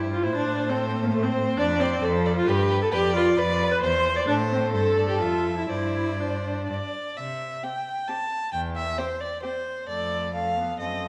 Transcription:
Already playing: cello G2, viola E4, violin G4 C5
0.13 viola F4
0.23 cello A2, viola E4, violin C5
0.35 viola D4
0.69 viola C4, violin A4
1.03 viola A#3
1.13 viola A3, violin C5
1.23 viola C4
1.57 cello F2, viola D4, violin D5
1.80 viola C4, violin D5
2.02 cello F2, viola A4, violin C5 D5
2.25 violin D5
2.36 viola F4
2.47 cello G2, viola G4, violin B4
2.71 violin B4
2.82 viola A4
2.92 cello F2, viola G4, violin B4 D5
3.15 viola F4, violin B4
3.37 cello F2, violin B4, viola D5
3.62 violin B4
3.72 viola B4
3.82 cello E2, viola C5, violin C5
4.05 violin C5
4.16 viola D5
4.27 cello A2, viola D4, violin A4 C5
4.51 viola C4
4.73 cello G2, viola A4, violin C5
4.97 violin D5
5.09 viola G4
5.21 cello F2, viola F4, violin E5
5.57 viola E4
5.69 cello G2, viola E4, violin C5 D5
6.19 viola D4, violin C5
6.67 cello G2, violin D5
7.17 cello C3, violin E5
7.63 viola C4, violin G4 G5
8.08 viola C4, violin G4 A5
8.53 cello E2, violin G5
8.76 violin E5
8.98 viola C4, violin G4 C5
9.20 violin D5
9.42 viola C4, violin G4 C5
9.88 cello F2, viola A3, violin A4 D5
10.34 viola A3, violin A4 F5
10.57 viola B3
10.79 cello F#2, viola C4, violin A4 D#5

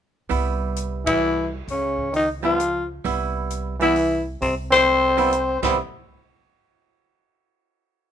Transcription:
0.29 upright bass C2, hollow-body jazz guitar G3 B3 E4, kick, open hi-hat
0.76 closed hi-hat
1.05 trombone E3, tenor saxophone E4, kick, ride
1.68 upright bass C#2, trombone C#3, tenor saxophone C#4, kick, open hi-hat
1.98 kick
2.13 trombone D#3, tenor saxophone D#4, open hi-hat
2.42 trombone F3, hollow-body jazz guitar G3 B3 F4, tenor saxophone F4
2.60 closed hi-hat
3.05 upright bass C2, hollow-body jazz guitar G3 B3 E4, kick, open hi-hat
3.50 closed hi-hat
3.79 trombone E3, hollow-body jazz guitar G3 B3 E4, tenor saxophone E4, open hi-hat
3.96 open hi-hat
4.41 upright bass C2, trombone C3, tenor saxophone C4, kick, open hi-hat
4.70 trombone C4, tenor saxophone C5, snare, ride
5.17 hollow-body jazz guitar G3 B3 E4, open hi-hat
5.33 closed hi-hat
5.61 upright bass C2, hollow-body jazz guitar G3 B3 E4, trombone C4, tenor saxophone C5, kick, snare, crash

